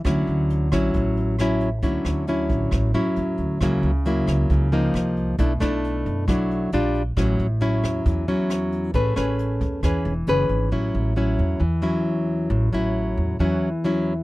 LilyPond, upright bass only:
\new Staff \with { instrumentName = "Upright bass" } { \clef bass \time 4/4 \key a \major \tempo 4 = 135 d,8 d,4 a,,8 a,,2 | d,8 d,4 a,,8 a,,8 fis,8 e,8 d,8 | cis,8 cis,4 cis,8 cis,4 c,4 | b,,8 b,,4 fis,8 b,,4 bes,,4 |
a,,8 a,,4 e,8 e,2 | a,,8 a,,4 e,8 e,8 e,,8 fis,,8 gis,,8 | a,,8 a,,4 e,8 e,2 | a,,8 a,,4 e,8 e,2 | }